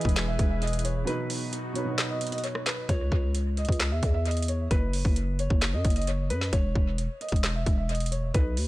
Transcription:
Already playing: ambient pad E3 E4 G#4 B4, grand piano E3 E4 G#4 B4, felt piano D#5
0.01 808-style bass E1, kick, closed hi-hat
0.09 closed hi-hat
0.16 snare, clap, closed hi-hat
0.28 felt piano E5
0.39 808-style bass E1, kick, closed hi-hat
0.50 felt piano E5
0.62 felt piano D#5, closed hi-hat
0.67 closed hi-hat
0.73 closed hi-hat
0.79 closed hi-hat
0.84 felt piano C#5, closed hi-hat
1.05 grand piano B2 F#3 D#4, ambient pad B3 D#4 F#4, felt piano B4, closed hi-hat
1.10 grand piano B4
1.30 open hi-hat
1.53 closed hi-hat
1.73 grand piano B2 F#3 D#4, felt piano C#5, closed hi-hat
1.78 grand piano B4
1.84 grand piano B2 F#3 D#4
1.89 grand piano B4
1.98 snare, clap, closed hi-hat
2.09 felt piano D#5
2.21 closed hi-hat
2.27 closed hi-hat
2.32 felt piano D#5, closed hi-hat
2.38 closed hi-hat
2.44 felt piano C#5, closed hi-hat
2.55 cross-stick
2.66 felt piano B4, snare, clap, closed hi-hat
2.89 808-style bass C#2, felt piano C#5, kick, closed hi-hat
3.12 808-style bass C#2, kick
3.35 closed hi-hat
3.57 felt piano D#5, closed hi-hat
3.65 808-style bass C#2, kick, closed hi-hat
3.72 closed hi-hat
3.80 snare, clap, closed hi-hat
3.91 808-style bass E2, felt piano E5
4.03 808-style bass E2, kick, closed hi-hat
4.14 felt piano E5
4.25 felt piano D#5, closed hi-hat
4.31 closed hi-hat
4.37 closed hi-hat
4.42 closed hi-hat
4.48 felt piano C#5, closed hi-hat
4.71 808-style bass F#1, felt piano B4, kick, closed hi-hat
4.93 open hi-hat
5.05 808-style bass F#1, kick
5.16 closed hi-hat
5.39 felt piano C#5, closed hi-hat
5.50 808-style bass F#1, kick
5.62 snare, clap, closed hi-hat
5.73 808-style bass F#2, felt piano D#5
5.85 808-style bass F#1, kick, closed hi-hat
5.90 closed hi-hat
5.96 felt piano D#5, closed hi-hat
6.02 closed hi-hat
6.07 felt piano C#5, closed hi-hat
6.30 808-style bass F#2, felt piano B4, closed hi-hat
6.41 snare
6.52 808-style bass E1, felt piano C#5, kick, closed hi-hat
6.75 808-style bass E1, kick
6.98 closed hi-hat
7.21 felt piano D#5, closed hi-hat
7.29 808-style bass E1, kick, closed hi-hat
7.36 closed hi-hat
7.44 snare, clap, closed hi-hat
7.55 felt piano E5
7.66 808-style bass E1, kick, closed hi-hat
7.77 felt piano E5
7.89 felt piano D#5, closed hi-hat
7.95 closed hi-hat
8.00 closed hi-hat
8.06 closed hi-hat
8.11 felt piano C#5, closed hi-hat
8.34 808-style bass B1, felt piano B4, kick, closed hi-hat
8.57 808-style bass D#2, open hi-hat

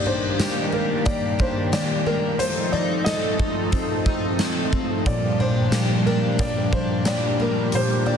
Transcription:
Already playing: analog synth pad D#3 G3 A#3 D4 G4, twelve-string acoustic guitar D#3 A#3 G4
0.06 twelve-string acoustic guitar D4, felt piano C5
0.39 twelve-string acoustic guitar G4, snare, closed hi-hat, tambourine
0.72 twelve-string acoustic guitar D4, felt piano A#4
1.05 twelve-string acoustic guitar A#3, felt piano D5, kick, closed hi-hat
1.39 twelve-string acoustic guitar D4, felt piano C5, kick
1.72 twelve-string acoustic guitar G4, felt piano D5, snare, closed hi-hat, tambourine
2.06 twelve-string acoustic guitar A#3, felt piano A#4
2.39 twelve-string acoustic guitar F3, analog synth pad F3 A3 C4 D#4 A4, felt piano C5, closed hi-hat
2.72 twelve-string acoustic guitar D#4, felt piano D5
3.04 twelve-string acoustic guitar A4, felt piano D#5, snare, closed hi-hat, tambourine
3.40 twelve-string acoustic guitar D#4, kick
3.72 twelve-string acoustic guitar C4, kick, closed hi-hat
4.06 twelve-string acoustic guitar D#4, kick
4.39 twelve-string acoustic guitar A4, snare, closed hi-hat, tambourine
4.73 twelve-string acoustic guitar C4, kick
5.06 twelve-string acoustic guitar A#2, analog synth pad G3 A#3 D4 G4, felt piano D5, kick, closed hi-hat
5.40 twelve-string acoustic guitar D4, felt piano C5
5.72 twelve-string acoustic guitar G4, snare, closed hi-hat, tambourine
6.06 twelve-string acoustic guitar D4, felt piano A#4
6.39 twelve-string acoustic guitar A#3, felt piano D5, kick, closed hi-hat
6.73 twelve-string acoustic guitar D4, felt piano C5, kick
7.05 twelve-string acoustic guitar G4, felt piano D5, snare, closed hi-hat, tambourine
7.40 twelve-string acoustic guitar A#3, felt piano A#4
7.72 twelve-string acoustic guitar A#2, felt piano C5, closed hi-hat
8.06 twelve-string acoustic guitar D4, felt piano D5

